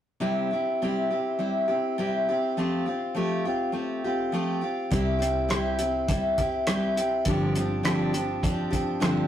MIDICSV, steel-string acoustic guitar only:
0, 0, Header, 1, 2, 480
1, 0, Start_track
1, 0, Key_signature, 0, "major"
1, 0, Tempo, 585938
1, 182, Time_signature, 4, 2, 24, 8
1, 7597, End_track
2, 0, Start_track
2, 0, Title_t, "Steel-string acoustic guitar"
2, 0, Program_c, 0, 25
2, 165, Note_on_c, 0, 48, 64
2, 171, Note_on_c, 0, 55, 63
2, 175, Note_on_c, 0, 64, 64
2, 178, Note_on_c, 0, 67, 68
2, 179, Note_on_c, 0, 60, 63
2, 406, Note_off_c, 0, 67, 0
2, 414, Note_off_c, 0, 48, 0
2, 415, Note_on_c, 0, 67, 38
2, 417, Note_off_c, 0, 55, 0
2, 419, Note_off_c, 0, 64, 0
2, 421, Note_off_c, 0, 60, 0
2, 433, Note_on_c, 0, 64, 40
2, 439, Note_on_c, 0, 60, 34
2, 659, Note_off_c, 0, 67, 0
2, 667, Note_off_c, 0, 60, 0
2, 668, Note_off_c, 0, 64, 0
2, 670, Note_on_c, 0, 48, 55
2, 673, Note_on_c, 0, 55, 63
2, 677, Note_on_c, 0, 60, 65
2, 680, Note_on_c, 0, 64, 62
2, 690, Note_on_c, 0, 67, 68
2, 895, Note_off_c, 0, 67, 0
2, 905, Note_off_c, 0, 64, 0
2, 905, Note_on_c, 0, 67, 41
2, 906, Note_off_c, 0, 48, 0
2, 908, Note_off_c, 0, 55, 0
2, 910, Note_off_c, 0, 60, 0
2, 914, Note_on_c, 0, 64, 40
2, 923, Note_on_c, 0, 60, 34
2, 1130, Note_off_c, 0, 60, 0
2, 1136, Note_on_c, 0, 55, 43
2, 1137, Note_off_c, 0, 64, 0
2, 1140, Note_on_c, 0, 60, 49
2, 1141, Note_off_c, 0, 67, 0
2, 1147, Note_on_c, 0, 64, 54
2, 1151, Note_on_c, 0, 67, 48
2, 1365, Note_off_c, 0, 67, 0
2, 1375, Note_on_c, 0, 67, 47
2, 1376, Note_off_c, 0, 64, 0
2, 1379, Note_off_c, 0, 55, 0
2, 1381, Note_off_c, 0, 60, 0
2, 1385, Note_on_c, 0, 64, 39
2, 1399, Note_on_c, 0, 60, 36
2, 1619, Note_off_c, 0, 67, 0
2, 1620, Note_off_c, 0, 60, 0
2, 1621, Note_off_c, 0, 64, 0
2, 1621, Note_on_c, 0, 55, 68
2, 1623, Note_on_c, 0, 48, 62
2, 1629, Note_on_c, 0, 60, 63
2, 1631, Note_on_c, 0, 64, 73
2, 1639, Note_on_c, 0, 67, 65
2, 1862, Note_off_c, 0, 55, 0
2, 1863, Note_off_c, 0, 48, 0
2, 1863, Note_off_c, 0, 67, 0
2, 1866, Note_off_c, 0, 60, 0
2, 1867, Note_off_c, 0, 64, 0
2, 1872, Note_on_c, 0, 67, 45
2, 1881, Note_on_c, 0, 64, 38
2, 1892, Note_on_c, 0, 60, 39
2, 2105, Note_off_c, 0, 60, 0
2, 2106, Note_on_c, 0, 53, 58
2, 2108, Note_off_c, 0, 67, 0
2, 2112, Note_off_c, 0, 64, 0
2, 2112, Note_on_c, 0, 57, 67
2, 2115, Note_on_c, 0, 60, 70
2, 2119, Note_on_c, 0, 65, 70
2, 2121, Note_on_c, 0, 67, 67
2, 2333, Note_off_c, 0, 67, 0
2, 2343, Note_on_c, 0, 67, 46
2, 2345, Note_off_c, 0, 53, 0
2, 2345, Note_off_c, 0, 65, 0
2, 2347, Note_off_c, 0, 57, 0
2, 2349, Note_off_c, 0, 60, 0
2, 2354, Note_on_c, 0, 65, 35
2, 2364, Note_on_c, 0, 60, 34
2, 2575, Note_off_c, 0, 60, 0
2, 2577, Note_on_c, 0, 53, 60
2, 2582, Note_off_c, 0, 65, 0
2, 2583, Note_off_c, 0, 67, 0
2, 2584, Note_on_c, 0, 60, 55
2, 2590, Note_on_c, 0, 57, 61
2, 2592, Note_on_c, 0, 65, 70
2, 2594, Note_on_c, 0, 67, 72
2, 2819, Note_off_c, 0, 67, 0
2, 2820, Note_off_c, 0, 53, 0
2, 2824, Note_off_c, 0, 60, 0
2, 2827, Note_off_c, 0, 57, 0
2, 2828, Note_off_c, 0, 65, 0
2, 2829, Note_on_c, 0, 67, 47
2, 2836, Note_on_c, 0, 65, 43
2, 2845, Note_on_c, 0, 60, 35
2, 3049, Note_off_c, 0, 60, 0
2, 3049, Note_off_c, 0, 65, 0
2, 3049, Note_on_c, 0, 57, 47
2, 3058, Note_on_c, 0, 60, 53
2, 3059, Note_off_c, 0, 67, 0
2, 3059, Note_on_c, 0, 65, 52
2, 3069, Note_on_c, 0, 67, 54
2, 3296, Note_off_c, 0, 57, 0
2, 3301, Note_off_c, 0, 60, 0
2, 3301, Note_off_c, 0, 65, 0
2, 3302, Note_off_c, 0, 67, 0
2, 3312, Note_on_c, 0, 67, 47
2, 3322, Note_on_c, 0, 65, 38
2, 3332, Note_on_c, 0, 60, 37
2, 3540, Note_on_c, 0, 53, 65
2, 3541, Note_off_c, 0, 60, 0
2, 3548, Note_off_c, 0, 65, 0
2, 3548, Note_off_c, 0, 67, 0
2, 3551, Note_on_c, 0, 60, 64
2, 3553, Note_on_c, 0, 57, 67
2, 3558, Note_on_c, 0, 65, 71
2, 3560, Note_on_c, 0, 67, 79
2, 3768, Note_off_c, 0, 67, 0
2, 3777, Note_on_c, 0, 67, 44
2, 3778, Note_off_c, 0, 65, 0
2, 3782, Note_off_c, 0, 53, 0
2, 3787, Note_off_c, 0, 60, 0
2, 3787, Note_on_c, 0, 65, 46
2, 3788, Note_off_c, 0, 57, 0
2, 3798, Note_on_c, 0, 60, 39
2, 4019, Note_off_c, 0, 60, 0
2, 4019, Note_on_c, 0, 48, 68
2, 4020, Note_off_c, 0, 67, 0
2, 4025, Note_off_c, 0, 65, 0
2, 4027, Note_on_c, 0, 55, 64
2, 4028, Note_on_c, 0, 60, 72
2, 4032, Note_on_c, 0, 64, 73
2, 4038, Note_on_c, 0, 67, 65
2, 4238, Note_off_c, 0, 67, 0
2, 4246, Note_off_c, 0, 64, 0
2, 4247, Note_on_c, 0, 67, 43
2, 4256, Note_off_c, 0, 60, 0
2, 4256, Note_on_c, 0, 64, 44
2, 4261, Note_off_c, 0, 48, 0
2, 4265, Note_off_c, 0, 55, 0
2, 4266, Note_on_c, 0, 60, 38
2, 4493, Note_off_c, 0, 60, 0
2, 4493, Note_on_c, 0, 48, 67
2, 4495, Note_off_c, 0, 67, 0
2, 4496, Note_on_c, 0, 55, 67
2, 4500, Note_off_c, 0, 64, 0
2, 4503, Note_on_c, 0, 60, 60
2, 4509, Note_on_c, 0, 64, 62
2, 4511, Note_on_c, 0, 67, 74
2, 4730, Note_off_c, 0, 67, 0
2, 4738, Note_off_c, 0, 48, 0
2, 4740, Note_off_c, 0, 55, 0
2, 4740, Note_on_c, 0, 67, 41
2, 4742, Note_off_c, 0, 64, 0
2, 4743, Note_off_c, 0, 60, 0
2, 4752, Note_on_c, 0, 64, 38
2, 4762, Note_on_c, 0, 60, 37
2, 4973, Note_off_c, 0, 60, 0
2, 4981, Note_on_c, 0, 55, 54
2, 4982, Note_off_c, 0, 67, 0
2, 4982, Note_on_c, 0, 60, 51
2, 4985, Note_off_c, 0, 64, 0
2, 4995, Note_on_c, 0, 64, 59
2, 4996, Note_on_c, 0, 67, 54
2, 5218, Note_off_c, 0, 67, 0
2, 5222, Note_off_c, 0, 55, 0
2, 5223, Note_off_c, 0, 60, 0
2, 5227, Note_on_c, 0, 67, 47
2, 5229, Note_off_c, 0, 64, 0
2, 5240, Note_on_c, 0, 64, 48
2, 5246, Note_on_c, 0, 60, 39
2, 5465, Note_off_c, 0, 60, 0
2, 5465, Note_off_c, 0, 67, 0
2, 5466, Note_off_c, 0, 64, 0
2, 5466, Note_on_c, 0, 48, 71
2, 5474, Note_on_c, 0, 55, 68
2, 5475, Note_on_c, 0, 60, 74
2, 5476, Note_on_c, 0, 64, 73
2, 5479, Note_on_c, 0, 67, 76
2, 5698, Note_off_c, 0, 67, 0
2, 5705, Note_off_c, 0, 48, 0
2, 5708, Note_off_c, 0, 55, 0
2, 5708, Note_on_c, 0, 67, 52
2, 5709, Note_off_c, 0, 60, 0
2, 5709, Note_off_c, 0, 64, 0
2, 5718, Note_on_c, 0, 64, 40
2, 5727, Note_on_c, 0, 60, 37
2, 5945, Note_off_c, 0, 67, 0
2, 5950, Note_off_c, 0, 64, 0
2, 5952, Note_off_c, 0, 60, 0
2, 5952, Note_on_c, 0, 43, 62
2, 5959, Note_on_c, 0, 50, 67
2, 5962, Note_on_c, 0, 60, 71
2, 5964, Note_on_c, 0, 53, 64
2, 5964, Note_on_c, 0, 67, 72
2, 5966, Note_on_c, 0, 62, 71
2, 6174, Note_off_c, 0, 67, 0
2, 6184, Note_on_c, 0, 67, 47
2, 6186, Note_off_c, 0, 62, 0
2, 6188, Note_off_c, 0, 43, 0
2, 6191, Note_off_c, 0, 50, 0
2, 6193, Note_off_c, 0, 60, 0
2, 6194, Note_off_c, 0, 53, 0
2, 6196, Note_on_c, 0, 62, 42
2, 6202, Note_on_c, 0, 60, 40
2, 6208, Note_on_c, 0, 53, 39
2, 6415, Note_off_c, 0, 53, 0
2, 6415, Note_off_c, 0, 60, 0
2, 6416, Note_on_c, 0, 43, 62
2, 6418, Note_on_c, 0, 50, 60
2, 6421, Note_off_c, 0, 67, 0
2, 6422, Note_off_c, 0, 62, 0
2, 6425, Note_on_c, 0, 53, 62
2, 6425, Note_on_c, 0, 60, 62
2, 6431, Note_on_c, 0, 67, 76
2, 6432, Note_on_c, 0, 62, 70
2, 6651, Note_off_c, 0, 67, 0
2, 6660, Note_off_c, 0, 43, 0
2, 6661, Note_off_c, 0, 50, 0
2, 6661, Note_on_c, 0, 67, 50
2, 6662, Note_off_c, 0, 62, 0
2, 6664, Note_off_c, 0, 53, 0
2, 6664, Note_off_c, 0, 60, 0
2, 6671, Note_on_c, 0, 62, 43
2, 6678, Note_on_c, 0, 60, 38
2, 6682, Note_on_c, 0, 53, 39
2, 6894, Note_off_c, 0, 53, 0
2, 6900, Note_off_c, 0, 60, 0
2, 6902, Note_off_c, 0, 67, 0
2, 6904, Note_on_c, 0, 53, 46
2, 6907, Note_off_c, 0, 62, 0
2, 6909, Note_on_c, 0, 60, 58
2, 6917, Note_on_c, 0, 62, 53
2, 6929, Note_on_c, 0, 67, 59
2, 7120, Note_off_c, 0, 67, 0
2, 7129, Note_off_c, 0, 62, 0
2, 7130, Note_on_c, 0, 67, 51
2, 7134, Note_off_c, 0, 60, 0
2, 7138, Note_off_c, 0, 53, 0
2, 7139, Note_on_c, 0, 62, 47
2, 7144, Note_on_c, 0, 60, 43
2, 7148, Note_on_c, 0, 53, 41
2, 7371, Note_off_c, 0, 53, 0
2, 7373, Note_off_c, 0, 62, 0
2, 7374, Note_off_c, 0, 60, 0
2, 7374, Note_on_c, 0, 43, 63
2, 7377, Note_off_c, 0, 67, 0
2, 7380, Note_on_c, 0, 53, 74
2, 7383, Note_on_c, 0, 50, 71
2, 7383, Note_on_c, 0, 62, 70
2, 7384, Note_on_c, 0, 60, 76
2, 7391, Note_on_c, 0, 67, 74
2, 7597, Note_off_c, 0, 43, 0
2, 7597, Note_off_c, 0, 50, 0
2, 7597, Note_off_c, 0, 53, 0
2, 7597, Note_off_c, 0, 60, 0
2, 7597, Note_off_c, 0, 62, 0
2, 7597, Note_off_c, 0, 67, 0
2, 7597, End_track
0, 0, End_of_file